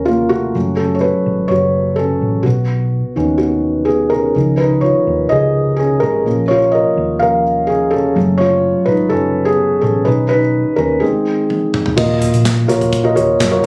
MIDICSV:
0, 0, Header, 1, 4, 480
1, 0, Start_track
1, 0, Tempo, 476190
1, 555, Time_signature, 4, 2, 24, 8
1, 13769, End_track
2, 0, Start_track
2, 0, Title_t, "Felt piano"
2, 0, Program_c, 0, 0
2, 0, Control_c, 0, 64, 127
2, 0, Note_on_c, 0, 53, 41
2, 0, Note_on_c, 0, 58, 37
2, 0, Note_on_c, 0, 61, 64
2, 0, Note_on_c, 0, 70, 74
2, 54, Note_on_c, 0, 65, 78
2, 83, Note_off_c, 0, 58, 0
2, 83, Note_on_c, 0, 58, 54
2, 295, Note_on_c, 0, 66, 82
2, 303, Note_off_c, 0, 58, 0
2, 312, Note_off_c, 0, 65, 0
2, 325, Note_on_c, 0, 57, 61
2, 511, Note_off_c, 0, 53, 0
2, 544, Note_off_c, 0, 57, 0
2, 553, Note_on_c, 0, 54, 47
2, 559, Note_on_c, 0, 57, 40
2, 565, Note_off_c, 0, 61, 0
2, 565, Note_on_c, 0, 61, 54
2, 571, Control_c, 0, 64, 0
2, 575, Note_off_c, 0, 70, 0
2, 738, Control_c, 0, 64, 127
2, 774, Note_on_c, 0, 69, 68
2, 787, Note_off_c, 0, 61, 0
2, 800, Note_off_c, 0, 66, 0
2, 802, Note_on_c, 0, 61, 52
2, 953, Note_on_c, 0, 73, 62
2, 956, Note_off_c, 0, 61, 0
2, 959, Note_off_c, 0, 69, 0
2, 1016, Note_on_c, 0, 71, 73
2, 1029, Note_off_c, 0, 73, 0
2, 1047, Note_on_c, 0, 66, 60
2, 1488, Note_off_c, 0, 66, 0
2, 1491, Note_on_c, 0, 73, 78
2, 1520, Note_off_c, 0, 71, 0
2, 1524, Note_on_c, 0, 66, 65
2, 1966, Note_off_c, 0, 66, 0
2, 1974, Note_on_c, 0, 69, 78
2, 1997, Note_off_c, 0, 73, 0
2, 2005, Note_on_c, 0, 61, 57
2, 2433, Note_off_c, 0, 54, 0
2, 2436, Note_off_c, 0, 57, 0
2, 2446, Note_off_c, 0, 61, 0
2, 2447, Note_on_c, 0, 66, 68
2, 2479, Note_off_c, 0, 69, 0
2, 2480, Note_on_c, 0, 59, 51
2, 2486, Control_c, 0, 64, 0
2, 2646, Control_c, 0, 64, 127
2, 3175, Note_off_c, 0, 59, 0
2, 3184, Note_on_c, 0, 51, 50
2, 3190, Note_on_c, 0, 59, 47
2, 3196, Note_on_c, 0, 61, 56
2, 3388, Note_off_c, 0, 66, 0
2, 3404, Note_on_c, 0, 66, 66
2, 3422, Note_off_c, 0, 59, 0
2, 3437, Note_on_c, 0, 59, 54
2, 3881, Note_off_c, 0, 59, 0
2, 3881, Note_on_c, 0, 68, 73
2, 3913, Note_off_c, 0, 66, 0
2, 3915, Note_on_c, 0, 59, 55
2, 4119, Note_off_c, 0, 68, 0
2, 4129, Note_on_c, 0, 70, 80
2, 4137, Note_off_c, 0, 59, 0
2, 4143, Note_off_c, 0, 61, 0
2, 4159, Note_on_c, 0, 61, 60
2, 4348, Note_off_c, 0, 51, 0
2, 4382, Note_off_c, 0, 61, 0
2, 4386, Note_on_c, 0, 51, 47
2, 4393, Note_on_c, 0, 53, 34
2, 4397, Note_on_c, 0, 61, 50
2, 4404, Control_c, 0, 64, 0
2, 4579, Control_c, 0, 64, 127
2, 4612, Note_on_c, 0, 71, 78
2, 4636, Note_off_c, 0, 70, 0
2, 4642, Note_on_c, 0, 63, 58
2, 4844, Note_off_c, 0, 71, 0
2, 4849, Note_on_c, 0, 73, 72
2, 4861, Note_off_c, 0, 63, 0
2, 4880, Note_on_c, 0, 65, 55
2, 5323, Note_off_c, 0, 65, 0
2, 5333, Note_on_c, 0, 75, 88
2, 5355, Note_off_c, 0, 73, 0
2, 5363, Note_on_c, 0, 68, 71
2, 5796, Note_off_c, 0, 68, 0
2, 5811, Note_on_c, 0, 68, 82
2, 5824, Note_off_c, 0, 61, 0
2, 5837, Note_off_c, 0, 75, 0
2, 5840, Note_on_c, 0, 61, 66
2, 6044, Note_off_c, 0, 68, 0
2, 6047, Note_on_c, 0, 70, 88
2, 6059, Note_off_c, 0, 61, 0
2, 6077, Note_on_c, 0, 61, 64
2, 6268, Note_off_c, 0, 51, 0
2, 6271, Note_off_c, 0, 53, 0
2, 6306, Note_off_c, 0, 61, 0
2, 6309, Note_on_c, 0, 53, 47
2, 6315, Note_on_c, 0, 58, 38
2, 6321, Note_on_c, 0, 61, 49
2, 6323, Control_c, 0, 64, 0
2, 6505, Note_off_c, 0, 70, 0
2, 6522, Control_c, 0, 64, 127
2, 6531, Note_on_c, 0, 73, 88
2, 6560, Note_on_c, 0, 65, 69
2, 6587, Note_off_c, 0, 73, 0
2, 6613, Note_off_c, 0, 65, 0
2, 6630, Note_off_c, 0, 53, 0
2, 6632, Note_off_c, 0, 58, 0
2, 6636, Note_off_c, 0, 61, 0
2, 6770, Note_on_c, 0, 75, 74
2, 6802, Note_on_c, 0, 70, 59
2, 7243, Note_off_c, 0, 70, 0
2, 7252, Note_on_c, 0, 77, 85
2, 7269, Note_on_c, 0, 53, 42
2, 7274, Note_on_c, 0, 58, 37
2, 7275, Note_off_c, 0, 75, 0
2, 7276, Note_on_c, 0, 61, 46
2, 7282, Note_on_c, 0, 70, 70
2, 7486, Note_off_c, 0, 53, 0
2, 7489, Note_off_c, 0, 58, 0
2, 7490, Note_off_c, 0, 61, 0
2, 7724, Note_off_c, 0, 70, 0
2, 7730, Note_on_c, 0, 68, 76
2, 7756, Note_off_c, 0, 77, 0
2, 7758, Note_on_c, 0, 61, 65
2, 7968, Note_on_c, 0, 69, 78
2, 7978, Note_off_c, 0, 61, 0
2, 7988, Note_off_c, 0, 68, 0
2, 7998, Note_on_c, 0, 61, 65
2, 8213, Note_off_c, 0, 61, 0
2, 8218, Note_on_c, 0, 54, 44
2, 8224, Note_on_c, 0, 57, 41
2, 8228, Note_on_c, 0, 61, 55
2, 8244, Control_c, 0, 64, 0
2, 8443, Note_on_c, 0, 73, 91
2, 8450, Control_c, 0, 64, 127
2, 8471, Note_on_c, 0, 65, 69
2, 8474, Note_off_c, 0, 69, 0
2, 8917, Note_off_c, 0, 65, 0
2, 8926, Note_on_c, 0, 71, 83
2, 8952, Note_off_c, 0, 73, 0
2, 8953, Note_on_c, 0, 63, 61
2, 8983, Note_off_c, 0, 71, 0
2, 9007, Note_off_c, 0, 63, 0
2, 9167, Note_on_c, 0, 69, 86
2, 9182, Note_off_c, 0, 61, 0
2, 9197, Note_on_c, 0, 61, 64
2, 9528, Note_on_c, 0, 68, 90
2, 9529, Note_off_c, 0, 61, 0
2, 9550, Note_off_c, 0, 69, 0
2, 9554, Note_on_c, 0, 59, 64
2, 9888, Note_off_c, 0, 59, 0
2, 9892, Note_on_c, 0, 69, 81
2, 9911, Note_off_c, 0, 68, 0
2, 9917, Note_on_c, 0, 61, 64
2, 10104, Note_off_c, 0, 54, 0
2, 10107, Note_off_c, 0, 57, 0
2, 10129, Note_on_c, 0, 71, 82
2, 10137, Note_off_c, 0, 61, 0
2, 10141, Note_on_c, 0, 51, 44
2, 10148, Note_on_c, 0, 59, 40
2, 10149, Note_off_c, 0, 69, 0
2, 10154, Note_on_c, 0, 61, 51
2, 10155, Note_on_c, 0, 63, 61
2, 10162, Control_c, 0, 64, 0
2, 10331, Control_c, 0, 64, 127
2, 10354, Note_off_c, 0, 71, 0
2, 10369, Note_on_c, 0, 71, 94
2, 10376, Note_off_c, 0, 63, 0
2, 10396, Note_on_c, 0, 63, 61
2, 10465, Note_off_c, 0, 51, 0
2, 10469, Note_off_c, 0, 59, 0
2, 10472, Note_off_c, 0, 61, 0
2, 10826, Note_off_c, 0, 71, 0
2, 10840, Note_off_c, 0, 63, 0
2, 10849, Note_on_c, 0, 70, 76
2, 10871, Note_on_c, 0, 61, 63
2, 11087, Note_on_c, 0, 68, 72
2, 11094, Note_off_c, 0, 61, 0
2, 11095, Note_on_c, 0, 51, 51
2, 11105, Note_on_c, 0, 56, 43
2, 11108, Note_off_c, 0, 70, 0
2, 11109, Note_on_c, 0, 60, 59
2, 11124, Control_c, 0, 64, 0
2, 11323, Control_c, 0, 64, 127
2, 11779, Note_off_c, 0, 68, 0
2, 11792, Note_off_c, 0, 60, 0
2, 12023, Note_off_c, 0, 51, 0
2, 12028, Note_off_c, 0, 56, 0
2, 12061, Note_on_c, 0, 65, 72
2, 12065, Note_on_c, 0, 66, 64
2, 12067, Note_on_c, 0, 46, 55
2, 12071, Note_on_c, 0, 70, 58
2, 12072, Note_on_c, 0, 75, 78
2, 12086, Control_c, 0, 64, 0
2, 12241, Control_c, 0, 64, 127
2, 12706, Note_off_c, 0, 65, 0
2, 12708, Note_off_c, 0, 66, 0
2, 12711, Note_off_c, 0, 70, 0
2, 12711, Note_off_c, 0, 75, 0
2, 12749, Note_off_c, 0, 46, 0
2, 12781, Note_on_c, 0, 65, 85
2, 12785, Note_on_c, 0, 66, 70
2, 12787, Note_on_c, 0, 70, 73
2, 12793, Note_on_c, 0, 73, 82
2, 13106, Note_off_c, 0, 65, 0
2, 13108, Note_off_c, 0, 66, 0
2, 13109, Note_off_c, 0, 70, 0
2, 13112, Note_off_c, 0, 73, 0
2, 13138, Note_on_c, 0, 65, 76
2, 13143, Note_on_c, 0, 66, 72
2, 13149, Note_on_c, 0, 70, 74
2, 13149, Note_on_c, 0, 75, 84
2, 13241, Note_off_c, 0, 65, 0
2, 13243, Note_off_c, 0, 66, 0
2, 13248, Note_off_c, 0, 70, 0
2, 13256, Note_on_c, 0, 65, 82
2, 13257, Note_off_c, 0, 75, 0
2, 13258, Note_on_c, 0, 66, 77
2, 13263, Note_on_c, 0, 70, 77
2, 13266, Note_on_c, 0, 73, 86
2, 13584, Note_off_c, 0, 65, 0
2, 13585, Note_off_c, 0, 66, 0
2, 13587, Note_off_c, 0, 70, 0
2, 13588, Note_off_c, 0, 73, 0
2, 13618, Note_on_c, 0, 65, 75
2, 13622, Note_on_c, 0, 66, 79
2, 13624, Note_on_c, 0, 70, 74
2, 13628, Note_on_c, 0, 73, 95
2, 13730, Note_off_c, 0, 66, 0
2, 13745, Note_off_c, 0, 65, 0
2, 13748, Note_off_c, 0, 70, 0
2, 13750, Note_off_c, 0, 73, 0
2, 13767, Control_c, 0, 64, 0
2, 13769, End_track
3, 0, Start_track
3, 0, Title_t, "Fingered electric bass"
3, 0, Program_c, 1, 33
3, 0, Note_on_c, 1, 39, 85
3, 514, Note_off_c, 1, 39, 0
3, 555, Note_on_c, 1, 30, 84
3, 1125, Note_off_c, 1, 30, 0
3, 1272, Note_on_c, 1, 32, 80
3, 1496, Note_off_c, 1, 32, 0
3, 1511, Note_on_c, 1, 30, 84
3, 2196, Note_off_c, 1, 30, 0
3, 2233, Note_on_c, 1, 33, 65
3, 2457, Note_off_c, 1, 33, 0
3, 2474, Note_on_c, 1, 35, 87
3, 3044, Note_off_c, 1, 35, 0
3, 3194, Note_on_c, 1, 39, 70
3, 4353, Note_off_c, 1, 39, 0
3, 4392, Note_on_c, 1, 37, 75
3, 4962, Note_off_c, 1, 37, 0
3, 5111, Note_on_c, 1, 39, 80
3, 5335, Note_off_c, 1, 39, 0
3, 5347, Note_on_c, 1, 37, 82
3, 6033, Note_off_c, 1, 37, 0
3, 6072, Note_on_c, 1, 32, 69
3, 6308, Note_off_c, 1, 32, 0
3, 6308, Note_on_c, 1, 34, 71
3, 6880, Note_off_c, 1, 34, 0
3, 7030, Note_on_c, 1, 39, 80
3, 8190, Note_off_c, 1, 39, 0
3, 8226, Note_on_c, 1, 30, 90
3, 8798, Note_off_c, 1, 30, 0
3, 8944, Note_on_c, 1, 32, 73
3, 9184, Note_off_c, 1, 32, 0
3, 9184, Note_on_c, 1, 30, 80
3, 9872, Note_off_c, 1, 30, 0
3, 9905, Note_on_c, 1, 33, 73
3, 10131, Note_off_c, 1, 33, 0
3, 10143, Note_on_c, 1, 35, 77
3, 10717, Note_off_c, 1, 35, 0
3, 10866, Note_on_c, 1, 39, 87
3, 11091, Note_off_c, 1, 39, 0
3, 12073, Note_on_c, 1, 39, 80
3, 12407, Note_off_c, 1, 39, 0
3, 12429, Note_on_c, 1, 34, 72
3, 12765, Note_off_c, 1, 34, 0
3, 12791, Note_on_c, 1, 34, 77
3, 13237, Note_off_c, 1, 34, 0
3, 13274, Note_on_c, 1, 39, 73
3, 13496, Note_off_c, 1, 39, 0
3, 13512, Note_on_c, 1, 42, 71
3, 13735, Note_off_c, 1, 42, 0
3, 13769, End_track
4, 0, Start_track
4, 0, Title_t, "Drums"
4, 11593, Note_on_c, 9, 48, 51
4, 11694, Note_off_c, 9, 48, 0
4, 11833, Note_on_c, 9, 45, 75
4, 11934, Note_off_c, 9, 45, 0
4, 11953, Note_on_c, 9, 43, 76
4, 12053, Note_off_c, 9, 43, 0
4, 12072, Note_on_c, 9, 36, 79
4, 12074, Note_on_c, 9, 49, 68
4, 12173, Note_off_c, 9, 36, 0
4, 12175, Note_off_c, 9, 49, 0
4, 12313, Note_on_c, 9, 42, 57
4, 12316, Note_on_c, 9, 43, 49
4, 12414, Note_off_c, 9, 42, 0
4, 12417, Note_off_c, 9, 43, 0
4, 12436, Note_on_c, 9, 42, 55
4, 12537, Note_off_c, 9, 42, 0
4, 12553, Note_on_c, 9, 36, 77
4, 12553, Note_on_c, 9, 42, 84
4, 12554, Note_on_c, 9, 38, 84
4, 12563, Note_on_c, 9, 39, 71
4, 12653, Note_off_c, 9, 42, 0
4, 12654, Note_off_c, 9, 36, 0
4, 12654, Note_off_c, 9, 38, 0
4, 12664, Note_off_c, 9, 39, 0
4, 12795, Note_on_c, 9, 42, 69
4, 12801, Note_on_c, 9, 38, 31
4, 12896, Note_off_c, 9, 42, 0
4, 12902, Note_off_c, 9, 38, 0
4, 12916, Note_on_c, 9, 43, 61
4, 12919, Note_on_c, 9, 42, 47
4, 13017, Note_off_c, 9, 43, 0
4, 13020, Note_off_c, 9, 42, 0
4, 13029, Note_on_c, 9, 42, 80
4, 13030, Note_on_c, 9, 36, 83
4, 13129, Note_off_c, 9, 42, 0
4, 13131, Note_off_c, 9, 36, 0
4, 13276, Note_on_c, 9, 42, 58
4, 13376, Note_off_c, 9, 42, 0
4, 13511, Note_on_c, 9, 36, 110
4, 13511, Note_on_c, 9, 42, 80
4, 13515, Note_on_c, 9, 38, 102
4, 13525, Note_on_c, 9, 39, 83
4, 13611, Note_off_c, 9, 42, 0
4, 13612, Note_off_c, 9, 36, 0
4, 13616, Note_off_c, 9, 38, 0
4, 13626, Note_off_c, 9, 39, 0
4, 13769, End_track
0, 0, End_of_file